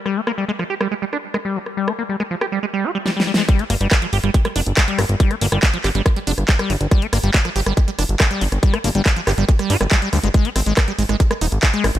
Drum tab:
HH |------------------------------------------------|------------------------------------------------|x--x--o--x--x--x--o--x--x--x--o--x--x--x--o--x--|x--x--o--x--x--x--o--x--x--x--o--x--x--x--o--x--|
CP |------------------------------------------------|------------------------------------------------|------------x-----------------------x-----------|------------x-----x-----------------x-----------|
SD |r-----r--------r-----r--------r-----r--------r--|---r--------r-----r-----------------o---o---o---|------r-----r--------r-----r--------r-----r-----|---r-----r--------r-----r--------r-----r--------|
BD |------------------------------------------------|------------------------------------------------|o-----------o-----------o-----------o-----------|o-----------o-----------o-----------o-----------|

HH |x--x--o--x--x--x--o--x--x--x--o--x--x--x--o--x--|x--x--o--x--x--x--o--x--x--x--o--x--x--x--o--x--|x--x--o--x--x--x--o--x--x--x--o--x--x--x--o--x--|
CP |------------x-----------------------x-----------|------------x-----x-----------------x-----------|------------x-----------------------x-----------|
SD |r-----r--------r-----r--------r-----r--------r--|---r--------r-----r--------r-----r--------r-----|------r-----r--------r-----r--------r-----r-----|
BD |o-----------o-----------o-----------o-----------|o-----------o-----------o-----------o-----------|o-----------o-----------o-----------o-----------|